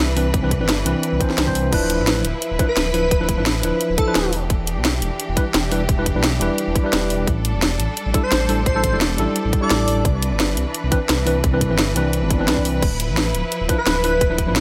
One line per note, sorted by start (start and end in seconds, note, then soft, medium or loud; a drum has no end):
0.00 0.15 C2 loud
0.00 1.70 E3 medium
0.00 1.69 D4 medium
0.00 1.70 B4 medium
0.16 0.32 C2 medium
0.16 0.26 E3 medium
0.16 0.27 C4 medium
0.16 0.27 D4 medium
0.16 0.27 B4 medium
0.16 open hi-hat medium
0.34 0.62 C2 loud
0.34 kick loud
0.34 closed hi-hat medium
0.42 0.48 E3 medium
0.42 0.49 C4 medium
0.42 0.49 D4 medium
0.42 0.49 B4 loud
0.51 kick medium
0.51 closed hi-hat loud
0.60 0.85 G1 loud
0.60 0.66 E3 medium
0.60 0.66 C4 medium
0.60 0.66 D4 medium
0.60 0.66 B4 medium
0.69 snare loud
0.69 closed hi-hat medium
0.85 0.94 C2 loud
0.85 1.19 E3 medium
0.85 1.19 C4 medium
0.85 1.19 D4 medium
0.85 1.19 B4 medium
0.85 closed hi-hat loud
1.03 closed hi-hat medium
1.12 1.20 C2 loud
1.20 1.44 E3 medium
1.20 1.45 C4 medium
1.20 1.45 D4 medium
1.20 1.45 C5 medium
1.20 kick loud
1.20 closed hi-hat loud
1.30 snare soft
1.38 1.54 C2 loud
1.38 snare loud
1.38 closed hi-hat medium
1.46 1.71 E3 medium
1.46 1.71 C4 medium
1.46 1.71 D4 medium
1.46 1.72 C5 medium
1.46 kick medium
1.55 1.71 C2 medium
1.55 open hi-hat medium
1.71 2.00 D1 loud
1.71 2.24 F3 loud
1.71 4.30 F3 medium
1.71 2.24 D4 medium
1.71 4.30 E4 medium
1.71 2.25 E4 loud
1.71 4.30 B4 medium
1.71 2.25 B4 loud
1.71 kick loud
1.71 closed hi-hat medium
1.71 crash loud
1.90 closed hi-hat loud
1.99 2.23 A1 medium
2.07 snare loud
2.07 closed hi-hat medium
2.25 2.33 D1 loud
2.25 closed hi-hat loud
2.42 closed hi-hat medium
2.51 2.59 D1 loud
2.59 2.65 F3 medium
2.59 2.66 D4 medium
2.59 2.66 E4 medium
2.59 2.66 B4 loud
2.59 kick loud
2.59 closed hi-hat loud
2.68 2.89 B4 loud
2.77 2.92 D1 loud
2.77 snare loud
2.77 closed hi-hat medium
2.93 3.10 D1 medium
2.93 3.04 F3 medium
2.93 3.04 D4 medium
2.93 3.04 E4 medium
2.93 3.15 B4 loud
2.93 3.04 B4 medium
2.93 open hi-hat medium
3.11 3.39 D1 loud
3.11 kick loud
3.11 closed hi-hat medium
3.20 3.26 F3 medium
3.20 3.26 D4 medium
3.20 3.26 E4 medium
3.20 3.26 B4 loud
3.29 kick medium
3.29 closed hi-hat loud
3.37 3.62 A1 loud
3.37 3.43 F3 medium
3.37 3.43 D4 medium
3.37 3.44 E4 medium
3.37 3.44 B4 medium
3.46 snare loud
3.46 closed hi-hat medium
3.62 3.72 D1 loud
3.62 4.04 F3 medium
3.62 4.05 D4 medium
3.62 4.05 E4 medium
3.62 4.06 B4 medium
3.62 closed hi-hat loud
3.81 closed hi-hat medium
3.90 3.97 D1 loud
3.98 4.24 A4 loud
3.98 kick loud
3.98 closed hi-hat loud
4.06 4.31 F3 medium
4.06 4.32 D4 medium
4.06 4.32 E4 medium
4.06 4.32 B4 medium
4.15 4.34 D1 loud
4.15 snare loud
4.15 closed hi-hat medium
4.33 4.48 E1 medium
4.33 7.25 E3 medium
4.33 12.78 D4 medium
4.33 7.25 G4 medium
4.33 open hi-hat medium
4.50 4.78 E1 loud
4.50 kick loud
4.50 closed hi-hat medium
4.67 closed hi-hat loud
4.77 5.01 B1 medium
4.85 snare loud
4.85 closed hi-hat medium
5.02 5.10 E1 loud
5.02 closed hi-hat loud
5.20 closed hi-hat medium
5.29 5.36 E1 loud
5.36 5.43 G3 medium
5.36 5.43 D4 medium
5.36 5.43 E4 medium
5.36 5.44 B4 loud
5.36 kick loud
5.36 closed hi-hat loud
5.54 5.70 E1 loud
5.54 snare loud
5.54 closed hi-hat medium
5.71 5.87 E1 medium
5.71 5.81 G3 medium
5.71 5.81 D4 medium
5.71 5.82 E4 medium
5.71 5.82 B4 medium
5.71 open hi-hat medium
5.89 6.17 E1 loud
5.89 kick loud
5.89 closed hi-hat medium
5.97 6.03 G3 medium
5.97 6.04 D4 medium
5.97 6.04 E4 medium
5.97 6.04 B4 loud
6.06 kick medium
6.06 closed hi-hat loud
6.15 6.40 B1 medium
6.15 6.21 G3 medium
6.15 6.21 D4 medium
6.15 6.21 E4 medium
6.15 6.22 B4 medium
6.24 snare loud
6.24 closed hi-hat medium
6.40 6.49 E1 loud
6.40 6.82 G3 medium
6.40 6.82 D4 medium
6.40 6.83 E4 medium
6.40 6.83 B4 medium
6.40 closed hi-hat medium
6.58 closed hi-hat medium
6.67 6.75 E1 loud
6.75 kick loud
6.75 closed hi-hat loud
6.83 7.26 G3 medium
6.83 7.26 D4 medium
6.83 7.27 E4 medium
6.83 7.27 B4 medium
6.93 7.09 E1 loud
6.93 snare loud
6.93 closed hi-hat medium
7.10 7.26 E1 medium
7.10 open hi-hat medium
7.27 7.55 A1 loud
7.27 10.02 G3 medium
7.27 10.02 A4 medium
7.27 kick loud
7.27 closed hi-hat medium
7.45 closed hi-hat medium
7.54 7.78 E1 loud
7.62 snare loud
7.62 closed hi-hat medium
7.80 7.88 A1 loud
7.80 closed hi-hat medium
7.97 closed hi-hat medium
8.06 8.13 A1 loud
8.13 8.20 G3 medium
8.13 8.20 D4 medium
8.13 8.21 E4 medium
8.13 8.21 A4 loud
8.13 kick loud
8.13 closed hi-hat loud
8.23 8.44 C5 medium
8.32 8.47 A1 loud
8.32 snare loud
8.32 closed hi-hat medium
8.48 8.65 A1 medium
8.48 8.59 G3 medium
8.48 8.59 D4 medium
8.48 8.59 E4 medium
8.48 8.59 A4 medium
8.48 open hi-hat medium
8.66 8.94 A1 loud
8.66 8.93 C5 loud
8.66 kick loud
8.66 closed hi-hat medium
8.75 8.81 G3 medium
8.75 8.81 D4 medium
8.75 8.81 E4 medium
8.75 8.81 A4 loud
8.84 kick medium
8.84 closed hi-hat medium
8.92 9.17 E1 medium
8.92 8.98 G3 medium
8.92 8.98 D4 medium
8.92 8.99 E4 medium
8.92 8.99 A4 medium
9.01 snare loud
9.01 closed hi-hat medium
9.17 9.27 A1 loud
9.17 9.59 G3 medium
9.17 9.60 D4 medium
9.17 9.60 E4 medium
9.17 9.61 A4 medium
9.17 closed hi-hat medium
9.36 closed hi-hat medium
9.45 9.52 A1 loud
9.53 kick loud
9.53 closed hi-hat medium
9.61 10.03 G3 medium
9.61 10.04 D4 medium
9.61 10.04 E4 medium
9.61 10.05 A4 loud
9.61 9.88 D5 loud
9.70 9.86 A1 loud
9.70 snare loud
9.70 closed hi-hat medium
9.88 10.03 A1 medium
9.88 open hi-hat medium
10.05 10.33 C2 loud
10.05 12.80 E3 medium
10.05 14.60 B4 medium
10.05 kick loud
10.05 closed hi-hat medium
10.22 closed hi-hat medium
10.31 10.56 G1 loud
10.40 snare loud
10.40 closed hi-hat medium
10.57 10.65 C2 loud
10.57 closed hi-hat medium
10.74 closed hi-hat medium
10.83 10.91 C2 loud
10.91 10.98 E3 loud
10.91 10.98 C4 medium
10.91 10.98 D4 medium
10.91 10.98 B4 loud
10.91 kick loud
10.91 closed hi-hat medium
11.09 11.25 C2 loud
11.09 snare loud
11.09 closed hi-hat medium
11.26 11.42 C2 medium
11.26 11.36 E3 medium
11.26 11.36 C4 medium
11.26 11.37 D4 medium
11.26 11.37 B4 medium
11.26 open hi-hat medium
11.44 11.72 C2 loud
11.44 kick loud
11.44 closed hi-hat medium
11.52 11.58 E3 medium
11.52 11.58 C4 medium
11.52 11.59 D4 medium
11.52 11.59 B4 loud
11.61 kick medium
11.61 closed hi-hat loud
11.69 11.94 G1 medium
11.69 11.76 E3 medium
11.69 11.76 C4 medium
11.69 11.76 D4 medium
11.69 11.76 B4 medium
11.79 snare loud
11.79 closed hi-hat medium
11.94 12.24 C2 loud
11.94 12.37 E3 medium
11.94 12.37 C4 medium
11.94 12.38 D4 medium
11.94 12.38 B4 medium
11.94 closed hi-hat loud
12.13 closed hi-hat medium
12.13 swell medium
12.22 12.49 G1 loud
12.30 kick loud
12.30 closed hi-hat loud
12.38 12.81 E3 medium
12.38 12.81 C4 medium
12.38 12.82 D4 medium
12.38 12.82 B4 medium
12.48 12.56 C2 loud
12.48 snare loud
12.48 closed hi-hat medium
12.57 kick medium
12.65 12.81 C2 medium
12.65 open hi-hat medium
12.82 13.10 D1 loud
12.82 14.60 F3 medium
12.82 14.60 E4 medium
12.82 kick loud
12.82 closed hi-hat medium
12.82 crash medium
13.00 closed hi-hat loud
13.09 13.33 A1 loud
13.17 snare loud
13.17 closed hi-hat medium
13.34 13.43 D1 loud
13.34 closed hi-hat loud
13.52 closed hi-hat medium
13.61 13.68 D1 loud
13.68 13.75 F3 medium
13.68 13.75 D4 medium
13.68 13.76 E4 medium
13.68 13.76 B4 loud
13.68 kick loud
13.68 closed hi-hat loud
13.78 13.99 B4 loud
13.86 14.02 D1 loud
13.86 snare loud
13.86 closed hi-hat medium
14.03 14.20 D1 medium
14.03 14.14 F3 medium
14.03 14.14 D4 medium
14.03 14.14 E4 medium
14.03 14.25 B4 loud
14.03 14.14 B4 medium
14.03 open hi-hat medium
14.21 14.49 D1 loud
14.21 kick loud
14.21 closed hi-hat medium
14.29 14.36 F3 medium
14.29 14.36 D4 medium
14.29 14.36 E4 medium
14.29 14.36 B4 loud
14.38 kick medium
14.38 closed hi-hat loud
14.47 14.60 A1 loud
14.47 14.53 F3 medium
14.47 14.53 D4 medium
14.47 14.54 E4 medium
14.47 14.54 B4 medium
14.56 snare loud
14.56 closed hi-hat medium